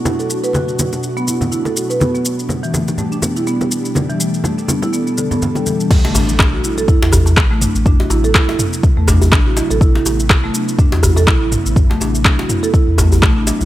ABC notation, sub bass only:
X:1
M:4/4
L:1/16
Q:"Swing 16ths" 1/4=123
K:Ador
V:1 name="Sub bass" clef=bass
z16 | z16 | z16 | z2 A,,,2 z A,,, z3 E,,3 A,,,2 z A,,,- |
A,,, z A,,,2 z A,,, z3 E,,3 A,,,2 z A,,,- | A,,, z A,,,2 z A,,, z3 E,,3 A,,,2 z A,,,- | A,,, z A,,,2 z A,,, z3 E,,3 A,,,2 z B,,, |]